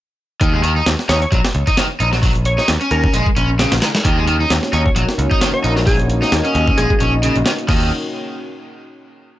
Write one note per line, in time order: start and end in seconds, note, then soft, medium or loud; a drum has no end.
0.41 0.80 D#2 loud
0.41 0.52 D#3 medium
0.41 kick loud
0.41 closed hi-hat medium
0.53 0.60 G#3 medium
0.63 0.72 D#3 loud
0.63 closed hi-hat medium
0.76 0.86 D#4 medium
0.86 0.94 D#2 medium
0.86 snare loud
0.86 closed hi-hat medium
0.99 snare soft
1.09 1.24 D#2 loud
1.09 1.17 D#4 loud
1.09 1.17 C#5 medium
1.09 snare loud
1.09 closed hi-hat medium
1.22 1.28 C#5 medium
1.22 closed hi-hat soft
1.32 1.40 A#1 medium
1.32 1.40 F#3 medium
1.32 kick loud
1.32 closed hi-hat medium
1.45 snare loud
1.45 closed hi-hat medium
1.55 1.63 C#2 medium
1.55 closed hi-hat soft
1.67 1.77 D#4 medium
1.67 kick loud
1.67 closed hi-hat medium
1.77 1.85 D#3 medium
1.77 snare loud
1.77 closed hi-hat medium
2.00 2.58 A#1 medium
2.00 2.08 D#4 loud
2.00 closed hi-hat medium
2.13 2.17 F#3 medium
2.13 snare soft
2.23 2.31 F#3 medium
2.23 kick loud
2.23 open hi-hat medium
2.35 closed hi-hat soft
2.45 2.54 C#5 medium
2.45 closed hi-hat medium
2.58 2.68 D#4 medium
2.58 2.65 C#5 medium
2.58 muted picked electric bass stroke soft
2.58 snare soft
2.68 2.76 D#2 medium
2.68 snare loud
2.68 closed hi-hat medium
2.81 3.13 C#4 medium
2.81 closed hi-hat soft
2.91 3.06 D#2 loud
2.91 3.26 A#4 medium
2.91 closed hi-hat medium
3.04 kick loud
3.14 3.22 A#1 medium
3.14 3.26 G#3 loud
3.14 closed hi-hat medium
3.26 kick loud
3.36 3.64 A#1 medium
3.36 3.48 C#4 medium
3.36 closed hi-hat medium
3.59 3.71 C#3 medium
3.59 snare loud
3.59 closed hi-hat medium
3.72 3.78 A#1 loud
3.72 snare loud
3.72 closed hi-hat medium
3.82 3.87 D#3 medium
3.82 snare loud
3.82 closed hi-hat medium
3.95 snare loud
3.95 closed hi-hat medium
4.04 4.44 D#2 loud
4.04 4.16 D#3 medium
4.04 7.65 A#3 medium
4.04 7.65 C#4 medium
4.04 7.65 D#4 medium
4.04 7.65 F#4 medium
4.04 5.85 C#5 loud
4.04 kick loud
4.04 closed hi-hat medium
4.17 4.24 G#3 medium
4.28 4.36 D#3 loud
4.28 closed hi-hat medium
4.40 4.50 D#4 medium
4.50 4.58 D#2 medium
4.50 snare loud
4.50 closed hi-hat medium
4.63 snare soft
4.73 4.88 D#2 loud
4.73 4.81 D#4 loud
4.73 4.81 C#5 medium
4.73 closed hi-hat medium
4.85 4.92 C#5 medium
4.85 kick loud
4.96 5.04 A#1 loud
4.96 5.04 F#3 medium
4.96 closed hi-hat medium
5.09 snare soft
5.18 5.26 C#2 medium
5.18 closed hi-hat medium
5.31 5.41 D#4 medium
5.31 kick loud
5.41 5.49 D#3 medium
5.41 snare loud
5.41 closed hi-hat medium
5.54 5.63 C#5 medium
5.64 6.21 A#1 medium
5.64 5.72 D#4 loud
5.64 closed hi-hat medium
5.76 5.80 F#3 medium
5.76 snare soft
5.87 5.95 F#3 medium
5.87 5.98 G#4 medium
5.87 7.67 D#5 loud
5.87 kick loud
5.87 open hi-hat medium
6.00 closed hi-hat soft
6.10 closed hi-hat medium
6.22 6.31 D#4 medium
6.22 muted picked electric bass stroke soft
6.22 snare soft
6.32 6.40 D#2 medium
6.32 snare loud
6.32 closed hi-hat medium
6.45 6.76 C#4 medium
6.45 closed hi-hat soft
6.55 6.70 D#2 loud
6.55 closed hi-hat medium
6.68 kick loud
6.77 6.85 A#1 medium
6.77 6.89 G#3 loud
6.77 6.86 G#4 medium
6.77 closed hi-hat medium
6.90 6.97 G#4 medium
6.90 kick loud
7.00 7.28 A#1 medium
7.00 7.12 C#4 medium
7.00 closed hi-hat medium
7.23 7.35 C#3 medium
7.23 closed hi-hat medium
7.36 7.42 A#1 loud
7.36 closed hi-hat soft
7.46 7.50 D#3 medium
7.46 snare loud
7.46 closed hi-hat medium
7.58 closed hi-hat soft
7.68 7.90 D#2 loud
7.68 7.89 D#3 loud
7.68 7.90 A#3 medium
7.68 7.90 C#4 medium
7.68 7.90 D#4 medium
7.68 7.90 F#4 medium
7.68 7.90 C#5 medium
7.68 kick loud
7.68 crash medium